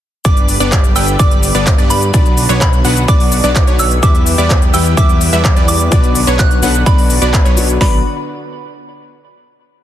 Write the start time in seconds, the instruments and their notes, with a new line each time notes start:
0.25 analog synth bass G1, analog synth pad D3 B3 G4, supersaw synth G3 B3 D4 B4 D5, synth pluck D5, synth bell D6, kick, closed hi-hat, shaker
0.37 closed hi-hat, shaker
0.49 open hi-hat, shaker
0.60 analog synth bass G1, supersaw synth G3 B3 D4 B4 D5, synth pluck D5, closed hi-hat, shaker
0.72 kick, clap, closed hi-hat, shaker
0.84 closed hi-hat, shaker
0.96 analog synth bass G1, supersaw synth G3 B3 D4 B4 G5, synth pluck G5, synth bell E6, open hi-hat, shaker
1.08 closed hi-hat, shaker
1.19 analog synth bass G1, supersaw synth G3 B3 D4 B4 D5, synth pluck D5, synth bell D6, kick, closed hi-hat, shaker
1.31 closed hi-hat, shaker
1.43 open hi-hat, shaker
1.55 analog synth bass G1, supersaw synth G3 B3 D4 B4 D5, synth pluck D5, closed hi-hat, shaker
1.67 kick, clap, closed hi-hat, shaker
1.78 analog synth bass G2, supersaw synth G3 B3 D4 B4 D5, synth pluck D5, closed hi-hat, shaker
1.90 synth bell B5, open hi-hat, shaker
2.02 closed hi-hat, shaker
2.14 analog synth bass B1, supersaw synth F#3 B3 D4 B4 D5, analog synth pad F#4, synth pluck D5, kick, closed hi-hat, shaker
2.26 closed hi-hat, shaker
2.37 open hi-hat, shaker
2.49 analog synth bass B1, supersaw synth F#3 B3 D4 B4 C#5, synth pluck C#5, closed hi-hat, shaker
2.61 synth bell B5, kick, clap, closed hi-hat, shaker
2.73 closed hi-hat, shaker
2.85 analog synth bass B1, supersaw synth F#3 B3 D4 B4 F#5, synth pluck F#5, open hi-hat, shaker
2.97 closed hi-hat, shaker
3.08 analog synth bass B1, supersaw synth F#3 B3 D4 B4 D5, synth pluck D5, synth bell D6, kick, closed hi-hat, shaker
3.20 open hi-hat, shaker
3.32 open hi-hat, shaker
3.44 analog synth bass B1, supersaw synth F#3 B3 D4 B4 D5, synth pluck D5, closed hi-hat, shaker
3.56 kick, clap, closed hi-hat, shaker
3.67 analog synth bass B1, supersaw synth F#3 B3 D4 B4 C#5, synth pluck C#5, closed hi-hat, shaker
3.79 synth bell E6, open hi-hat, shaker
3.91 closed hi-hat, shaker
4.02 analog synth bass E2, grand piano E3 B3 E4 G4 B4, analog synth pad E3 B3 G4, supersaw synth G3 B3 E4 B4 E5, synth pluck E5, synth bell D6, kick, closed hi-hat, shaker
4.15 closed hi-hat, shaker
4.27 open hi-hat, shaker
4.38 analog synth bass E2, supersaw synth G3 B3 E4 B4 D5, synth pluck D5, closed hi-hat, shaker
4.50 kick, clap, closed hi-hat, shaker
4.62 closed hi-hat, shaker
4.72 analog synth bass E2, grand piano E3 B3 E4 G4 B4, supersaw synth G3 B3 E4 B4 G5, synth pluck G5, synth bell E6, open hi-hat, shaker
4.86 closed hi-hat, shaker
4.97 analog synth bass E2, supersaw synth G3 B3 E4 B4 E5, synth pluck E5, synth bell D6, kick, closed hi-hat, shaker
5.09 closed hi-hat, shaker
5.21 open hi-hat, shaker
5.33 analog synth bass E2, supersaw synth G3 B3 E4 B4 E5, synth pluck E5, closed hi-hat, shaker
5.45 kick, clap, closed hi-hat, shaker
5.56 analog synth bass E2, supersaw synth G3 B3 E4 B4 D5, synth pluck D5, closed hi-hat, shaker
5.68 synth bell D6, open hi-hat, shaker
5.80 closed hi-hat, shaker
5.91 analog synth bass B1, grand piano B2 B3 D4 F#4 B4, analog synth pad D3 F#4, supersaw synth F#3 B3 D4 B4 D5, synth pluck D5, kick, closed hi-hat, shaker
6.04 closed hi-hat, shaker
6.15 open hi-hat, shaker
6.27 analog synth bass B1, supersaw synth F#3 B3 D4 B4 C#5, synth pluck C#5, closed hi-hat, shaker
6.39 synth bell F#6, kick, clap, closed hi-hat, shaker
6.51 closed hi-hat, shaker
6.62 analog synth bass B1, grand piano B2 B3 D4 F#4 A4, supersaw synth F#3 B3 D4 B4 F#5, synth pluck F#5, open hi-hat, shaker
6.75 closed hi-hat, shaker
6.86 analog synth bass B1, supersaw synth F#3 B3 D4 B4 D5, synth pluck D5, synth bell B5, kick, closed hi-hat, shaker
6.98 open hi-hat, shaker
7.10 open hi-hat, shaker
7.22 analog synth bass B1, supersaw synth F#3 B3 D4 B4 D5, synth pluck D5, closed hi-hat, shaker
7.34 kick, clap, closed hi-hat, shaker
7.45 analog synth bass B1, supersaw synth F#3 B3 D4 B4 C#5, synth pluck C#5, closed hi-hat, shaker
7.57 grand piano B2 B3 D4 F#4 B4, open hi-hat, shaker
7.69 closed hi-hat, shaker
7.79 analog synth bass B1, analog synth pad D3 B3 F#4, supersaw synth F#3 B3 D4 B4 D5, grand piano B3 D4 F#4 B4, synth pluck D5, synth bell B5, kick, snare, open hi-hat